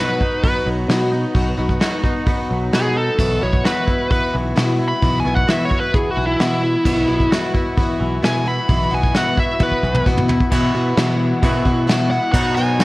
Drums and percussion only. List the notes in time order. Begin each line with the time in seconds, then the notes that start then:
0.21 kick
0.43 kick, open hi-hat
0.89 snare, open hi-hat
1.35 kick, open hi-hat
1.69 kick
1.81 snare, open hi-hat
2.04 kick
2.27 kick, open hi-hat
2.73 snare, open hi-hat
3.19 kick, crash
3.53 kick
3.65 snare, open hi-hat
3.87 kick
4.11 kick, open hi-hat
4.57 snare, open hi-hat
5.02 kick, open hi-hat
5.37 kick
5.48 snare, open hi-hat
5.71 kick
5.94 kick, open hi-hat
6.40 snare, open hi-hat
6.85 kick, crash
7.20 kick
7.32 snare, open hi-hat
7.54 kick
7.77 kick, open hi-hat
8.23 snare, open hi-hat
8.69 kick, open hi-hat
9.03 kick
9.14 snare, open hi-hat
9.37 kick
9.60 kick, high tom
9.72 kick
9.83 kick
9.95 mid tom
10.06 kick
10.17 mid tom
10.29 floor tom
10.40 kick
10.51 kick, crash
10.97 snare, crash
11.43 kick, crash
11.66 kick
11.89 snare, crash
12.34 kick, crash
12.56 crash
12.79 snare, crash